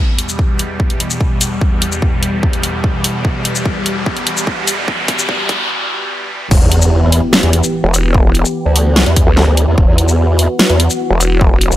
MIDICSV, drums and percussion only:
0, 0, Header, 1, 2, 480
1, 0, Start_track
1, 0, Key_signature, 1, "minor"
1, 0, Tempo, 408163
1, 1898, Time_signature, 4, 2, 24, 8
1, 13837, End_track
2, 0, Start_track
2, 0, Title_t, "Drums"
2, 218, Note_on_c, 9, 42, 81
2, 336, Note_off_c, 9, 42, 0
2, 339, Note_on_c, 9, 82, 58
2, 456, Note_off_c, 9, 82, 0
2, 458, Note_on_c, 9, 36, 96
2, 576, Note_off_c, 9, 36, 0
2, 698, Note_on_c, 9, 42, 79
2, 816, Note_off_c, 9, 42, 0
2, 938, Note_on_c, 9, 36, 92
2, 1056, Note_off_c, 9, 36, 0
2, 1059, Note_on_c, 9, 42, 36
2, 1177, Note_off_c, 9, 42, 0
2, 1178, Note_on_c, 9, 42, 81
2, 1296, Note_off_c, 9, 42, 0
2, 1299, Note_on_c, 9, 82, 59
2, 1416, Note_off_c, 9, 82, 0
2, 1418, Note_on_c, 9, 36, 94
2, 1536, Note_off_c, 9, 36, 0
2, 1658, Note_on_c, 9, 46, 93
2, 1658, Note_on_c, 9, 82, 80
2, 1776, Note_off_c, 9, 46, 0
2, 1776, Note_off_c, 9, 82, 0
2, 1898, Note_on_c, 9, 36, 98
2, 2016, Note_off_c, 9, 36, 0
2, 2138, Note_on_c, 9, 42, 79
2, 2256, Note_off_c, 9, 42, 0
2, 2259, Note_on_c, 9, 82, 56
2, 2376, Note_off_c, 9, 82, 0
2, 2378, Note_on_c, 9, 36, 95
2, 2496, Note_off_c, 9, 36, 0
2, 2618, Note_on_c, 9, 42, 81
2, 2736, Note_off_c, 9, 42, 0
2, 2858, Note_on_c, 9, 36, 99
2, 2976, Note_off_c, 9, 36, 0
2, 2979, Note_on_c, 9, 42, 38
2, 3096, Note_off_c, 9, 42, 0
2, 3098, Note_on_c, 9, 42, 82
2, 3216, Note_off_c, 9, 42, 0
2, 3338, Note_on_c, 9, 36, 96
2, 3456, Note_off_c, 9, 36, 0
2, 3578, Note_on_c, 9, 46, 93
2, 3696, Note_off_c, 9, 46, 0
2, 3818, Note_on_c, 9, 36, 105
2, 3936, Note_off_c, 9, 36, 0
2, 4058, Note_on_c, 9, 42, 81
2, 4176, Note_off_c, 9, 42, 0
2, 4179, Note_on_c, 9, 82, 57
2, 4296, Note_off_c, 9, 82, 0
2, 4298, Note_on_c, 9, 36, 103
2, 4416, Note_off_c, 9, 36, 0
2, 4538, Note_on_c, 9, 42, 82
2, 4656, Note_off_c, 9, 42, 0
2, 4778, Note_on_c, 9, 36, 103
2, 4896, Note_off_c, 9, 36, 0
2, 4899, Note_on_c, 9, 42, 37
2, 5016, Note_off_c, 9, 42, 0
2, 5018, Note_on_c, 9, 42, 80
2, 5136, Note_off_c, 9, 42, 0
2, 5139, Note_on_c, 9, 82, 57
2, 5256, Note_off_c, 9, 82, 0
2, 5258, Note_on_c, 9, 36, 107
2, 5376, Note_off_c, 9, 36, 0
2, 5498, Note_on_c, 9, 46, 94
2, 5498, Note_on_c, 9, 82, 77
2, 5616, Note_off_c, 9, 46, 0
2, 5616, Note_off_c, 9, 82, 0
2, 5738, Note_on_c, 9, 36, 109
2, 5856, Note_off_c, 9, 36, 0
2, 5978, Note_on_c, 9, 36, 104
2, 5978, Note_on_c, 9, 42, 76
2, 6096, Note_off_c, 9, 36, 0
2, 6096, Note_off_c, 9, 42, 0
2, 6099, Note_on_c, 9, 82, 60
2, 6216, Note_off_c, 9, 82, 0
2, 6218, Note_on_c, 9, 36, 104
2, 6336, Note_off_c, 9, 36, 0
2, 6458, Note_on_c, 9, 36, 107
2, 6458, Note_on_c, 9, 46, 60
2, 6575, Note_off_c, 9, 46, 0
2, 6576, Note_off_c, 9, 36, 0
2, 7658, Note_on_c, 9, 36, 124
2, 7658, Note_on_c, 9, 49, 105
2, 7775, Note_off_c, 9, 49, 0
2, 7776, Note_off_c, 9, 36, 0
2, 7898, Note_on_c, 9, 42, 83
2, 8016, Note_off_c, 9, 42, 0
2, 8018, Note_on_c, 9, 82, 62
2, 8136, Note_off_c, 9, 82, 0
2, 8378, Note_on_c, 9, 46, 94
2, 8495, Note_off_c, 9, 46, 0
2, 8618, Note_on_c, 9, 38, 122
2, 8735, Note_off_c, 9, 38, 0
2, 8738, Note_on_c, 9, 42, 38
2, 8856, Note_off_c, 9, 42, 0
2, 8858, Note_on_c, 9, 42, 83
2, 8975, Note_off_c, 9, 42, 0
2, 8978, Note_on_c, 9, 82, 61
2, 9096, Note_off_c, 9, 82, 0
2, 9338, Note_on_c, 9, 42, 86
2, 9338, Note_on_c, 9, 82, 79
2, 9455, Note_off_c, 9, 42, 0
2, 9455, Note_off_c, 9, 82, 0
2, 9578, Note_on_c, 9, 36, 127
2, 9696, Note_off_c, 9, 36, 0
2, 9818, Note_on_c, 9, 42, 82
2, 9936, Note_off_c, 9, 42, 0
2, 9939, Note_on_c, 9, 82, 60
2, 10056, Note_off_c, 9, 82, 0
2, 10298, Note_on_c, 9, 46, 93
2, 10415, Note_off_c, 9, 46, 0
2, 10538, Note_on_c, 9, 38, 124
2, 10655, Note_off_c, 9, 38, 0
2, 10659, Note_on_c, 9, 42, 39
2, 10776, Note_off_c, 9, 42, 0
2, 10778, Note_on_c, 9, 36, 110
2, 10778, Note_on_c, 9, 42, 88
2, 10895, Note_off_c, 9, 42, 0
2, 10896, Note_off_c, 9, 36, 0
2, 11018, Note_on_c, 9, 38, 64
2, 11135, Note_off_c, 9, 38, 0
2, 11258, Note_on_c, 9, 42, 84
2, 11376, Note_off_c, 9, 42, 0
2, 11498, Note_on_c, 9, 36, 127
2, 11616, Note_off_c, 9, 36, 0
2, 11738, Note_on_c, 9, 42, 83
2, 11856, Note_off_c, 9, 42, 0
2, 11859, Note_on_c, 9, 82, 57
2, 11977, Note_off_c, 9, 82, 0
2, 12218, Note_on_c, 9, 46, 89
2, 12336, Note_off_c, 9, 46, 0
2, 12458, Note_on_c, 9, 38, 127
2, 12576, Note_off_c, 9, 38, 0
2, 12579, Note_on_c, 9, 42, 38
2, 12696, Note_off_c, 9, 42, 0
2, 12698, Note_on_c, 9, 42, 84
2, 12816, Note_off_c, 9, 42, 0
2, 12819, Note_on_c, 9, 82, 59
2, 12936, Note_off_c, 9, 82, 0
2, 13178, Note_on_c, 9, 42, 81
2, 13178, Note_on_c, 9, 82, 78
2, 13296, Note_off_c, 9, 42, 0
2, 13296, Note_off_c, 9, 82, 0
2, 13418, Note_on_c, 9, 36, 125
2, 13536, Note_off_c, 9, 36, 0
2, 13658, Note_on_c, 9, 42, 79
2, 13776, Note_off_c, 9, 42, 0
2, 13779, Note_on_c, 9, 82, 58
2, 13837, Note_off_c, 9, 82, 0
2, 13837, End_track
0, 0, End_of_file